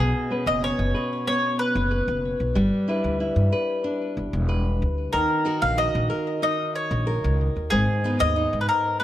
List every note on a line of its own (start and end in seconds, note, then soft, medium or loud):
0.00 0.11 B1 medium
0.00 2.56 B2 medium
0.00 0.30 B3 medium
0.00 0.48 G#4 medium
0.30 1.27 B3 medium
0.30 0.61 C#4 medium
0.30 0.94 B4 medium
0.46 0.71 F#1 medium
0.46 0.63 D#5 medium
0.62 2.62 C#4 medium
0.62 1.26 C#5 medium
0.79 0.91 F#1 medium
0.94 1.91 B4 medium
1.27 2.87 B3 medium
1.27 1.59 C#5 medium
1.59 2.20 B4 medium
1.75 2.00 F#1 medium
1.91 2.89 B4 medium
2.08 2.33 F#1 medium
2.40 2.52 B1 medium
2.55 2.69 G1 medium
2.55 5.14 G3 medium
2.88 3.83 D4 medium
2.88 3.19 E4 medium
2.88 3.51 B4 medium
3.04 3.29 D2 medium
3.20 5.20 E4 medium
3.36 3.49 G2 medium
3.52 4.47 B4 medium
3.84 5.20 D4 medium
4.17 4.30 G1 medium
4.33 4.84 E1 medium
4.49 5.20 B4 medium
4.82 5.07 D2 medium
5.13 5.27 D#2 medium
5.13 8.63 D#3 medium
5.13 5.63 A#4 medium
5.45 6.42 D#4 medium
5.45 5.76 F#4 medium
5.45 6.09 A#4 medium
5.62 5.87 A#1 medium
5.62 5.79 F5 medium
5.78 7.78 F#4 medium
5.78 6.42 D#5 medium
5.95 6.07 A#1 medium
6.10 7.06 A#4 medium
6.42 8.04 D#4 medium
6.42 6.75 D#5 medium
6.75 7.36 C#5 medium
6.91 7.16 A#1 loud
7.07 7.78 A#4 medium
7.24 7.49 C#2 medium
7.56 7.69 D#2 medium
7.70 7.85 G#1 loud
7.70 9.04 G#2 medium
7.70 8.16 G#4 medium
8.04 9.00 B3 medium
8.04 8.35 D#4 medium
8.04 9.04 B4 medium
8.20 8.46 D#2 medium
8.20 8.61 D#5 loud
8.36 9.04 D#4 medium
8.53 8.65 G#2 medium
8.61 8.68 B4 medium
8.69 8.99 A#4 medium
9.00 9.04 B3 medium
9.00 9.04 B4 medium